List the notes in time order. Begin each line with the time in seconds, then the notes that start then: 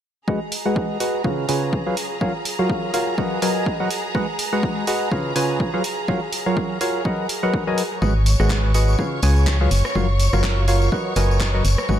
0.28 G#3 F#4 G#4 B4 D#5 F#5 A#5, kick
0.52 open hi-hat
0.66 G#3 F#4 G#4 B4 D#5 F#5
0.76 kick
1.00 F#4 G#4 B4 D#5 F#5, open hi-hat
1.24 C#3 F4 G#4 B4 C#5 F5, kick
1.49 C#3 F4 G#4 B4 C#5 G#5, open hi-hat
1.73 kick
1.86 F#3 F4 G#4 B4 C#5 F5
1.97 open hi-hat
2.21 F#3 F4 F#4 A#4 C#5 F5, kick
2.45 open hi-hat
2.59 F#3 F4 F#4 A#4 C#5 F5
2.70 kick
2.94 F4 F#4 A#4 C#5 F5, open hi-hat
3.18 F#3 F#4 A#4 B4 D#5 F#5, kick
3.42 F#3 F#4 A#4 B4 D#5 G#5, open hi-hat
3.66 kick
3.80 F#3 F#4 A#4 B4 D#5 F#5
3.91 open hi-hat
4.15 G#3 F#4 G#4 B4 D#5 F#5, kick
4.39 open hi-hat
4.53 G#3 F#4 G#4 B4 D#5 F#5
4.63 kick
4.87 F#4 G#4 B4 D#5 F#5, open hi-hat
5.11 C#3 F4 G#4 B4 C#5 F5, kick
5.36 C#3 F4 G#4 B4 C#5 G#5, open hi-hat
5.60 kick
5.74 F#3 F4 G#4 B4 C#5 F5
5.84 open hi-hat
6.08 F#3 F4 F#4 A#4 C#5 F5, kick
6.33 open hi-hat
6.46 F#3 F4 F#4 A#4 C#5 F5
6.57 kick
6.81 F4 F#4 A#4 C#5 F5, open hi-hat
7.05 F#3 F#4 A#4 B4 D#5 F#5, kick
7.29 open hi-hat
7.43 F#3 F#4 A#4 B4 D#5 F#5
7.54 kick
7.67 F#3 F#4 A#4 B4 D#5 G#5
7.78 open hi-hat
8.02 G#1 G#3 F#4 G#4 B4 C#5 D#5 F#5 C#6, kick, tambourine
8.26 open hi-hat, tambourine
8.40 G#1 G#3 F#4 G#4 B4 D#5 F#5, cross-stick, tambourine
8.50 kick, clap
8.74 F#4 G#4 B4 D#5 F#5, open hi-hat, tambourine
8.88 tambourine
8.99 C#3 F4 G#4 B4 C#5 F5, kick, tambourine
9.22 C#2 C#3 F4 G#4 B4 C#5 G#5, open hi-hat, tambourine
9.36 tambourine
9.47 kick, clap, tambourine
9.61 F#3 F4 G#4 B4 C#5 F5
9.71 F#1, open hi-hat, tambourine
9.85 cross-stick, tambourine
9.95 F#1 F#3 F4 F#4 A#4 C#5 F5, kick, tambourine
10.19 open hi-hat, tambourine
10.33 F#1 F#3 F4 F#4 A#4 C#5 F5, cross-stick, tambourine
10.44 kick, clap
10.68 F4 F#4 A#4 C#5 F5, open hi-hat, tambourine
10.82 tambourine
10.92 F#3 F#4 A#4 B4 D#5 F#5, kick, tambourine
11.16 F#1 F#3 F#4 A#4 B4 D#5 G#5, open hi-hat, tambourine
11.31 tambourine
11.40 kick, clap, tambourine
11.54 F#3 F#4 A#4 B4 D#5 F#5
11.65 F#1, open hi-hat, tambourine
11.78 cross-stick, tambourine
11.89 G#1 G#3 F#4 G#4 B4 D#5 F#5, kick, tambourine